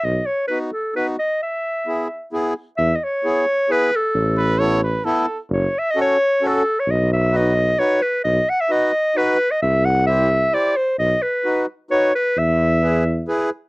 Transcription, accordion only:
X:1
M:3/4
L:1/8
Q:1/4=131
K:E
V:1 name="Accordion"
z2 [B,DF] z [B,DF] z | z2 [B,EG] z [B,EG] z | z2 [B,EG] z [B,EG] z | z2 [B,EA] z [B,EA] z |
z2 [CFA] z [CFA] z | z2 [DFB] z [DFB] z | z2 [DFB] z [DFB] z | z2 [E=G=c] z [EGc] z |
z2 [DFB] z [DFB] z | z2 [EGB] z [EGB] z |]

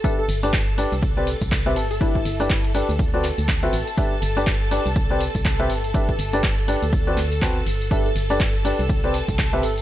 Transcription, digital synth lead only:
X:1
M:4/4
L:1/16
Q:"Swing 16ths" 1/4=122
K:G
V:1 name="Digital synth lead"
A A z12 A A | E6 z8 z2 | z16 | z16 |
A A z12 A z |]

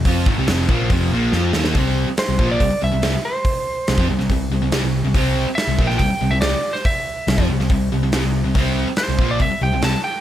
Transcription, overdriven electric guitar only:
X:1
M:4/4
L:1/16
Q:1/4=141
K:Cmix
V:1 name="Overdriven electric guitar" clef=bass
[F,CF]2 [_A,,_E,] [C,G,] [F,,C,F,]2 [B,,F,B,]2 [F,,C,F,]2 [B,,F,B,]2 [F,CF]2 [E,B,_E]2 | [C,G,C]3 z2 [C,G,] [B,,F,B,]2 [C,G,] z [C,G,] [C,G,] [C,G,] z3 | z4 [C,G,] [F,C] [C,G,] [C,G,] [C,G,]2 [C,G,] [C,G,] [C,G,] [C,G,]2 [C,G,] | [C,G,C]3 z2 [C,G,] [B,,F,B,]2 [C,G,] z [C,G,] [C,G,] [C,G,] z3 |
z4 [C,G,] [F,C] [C,G,] [C,G,] [C,G,]2 [C,G,] [C,G,] [C,G,] [C,G,]2 [C,G,] | [C,G,C]3 z2 [C,G,] [B,,F,B,]2 [C,G,] z [C,G,] [C,G,] [C,G,] z3 |]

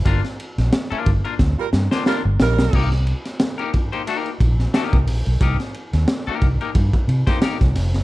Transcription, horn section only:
X:1
M:4/4
L:1/16
Q:"Swing 16ths" 1/4=90
K:Cm
V:1 name="Horn section"
z8 z [G,FB] z2 [G,FB] z [G,EB]2- | [G,EB] z12 z3 | z16 |]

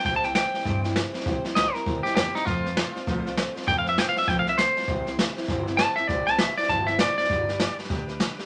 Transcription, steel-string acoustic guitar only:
X:1
M:4/4
L:1/8
Q:"Swing" 1/4=199
K:C
V:1 name="Steel-string acoustic guitar"
[C,E,G,CEc] [G,CEc] [G,CEc] [G,CEc] [C,E,G,CEc] [G,CEc] [G,CEc] [G,CEc] | [C,E,G,CEc] [G,CEc] [G,Cc] [G,CEc] [C,E,G,CEc] [G,CEc] [G,CEc] [G,CEc] | [F,A,CFc] [CFc] [A,CFc] [CFc] [F,A,CFc] [CFc] [A,CFc] [CFc] | [F,A,CFc] [CFc] [A,CFc] [CFc] [F,A,CFc] [CFc] [A,CFc] [CFc] |
[C,E,G,CEc] [G,CEc] [G,CEc] [G,CEc] [C,E,G,CEc] [G,CEc] [G,c] [G,CEc] | [C,E,G,CEc] [G,CEc] [G,CEc] [G,CEc] [C,E,G,CEc] [G,CEc] [G,CEc] [G,CEc] | [G,DGB] [DGB] [G,GB] [DGB] [G,DGB] [DGB] [G,DGB] [DGB] |]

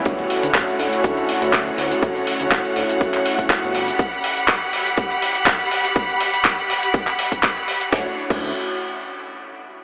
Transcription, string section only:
X:1
M:4/4
L:1/8
Q:"Swing 16ths" 1/4=122
K:D
V:1 name="String section"
[D,cf]8- | [D,cf]6- [D,cf] [Gb]- | [Gb]8- | [Gb]8 |
[Dcf] z6 z |]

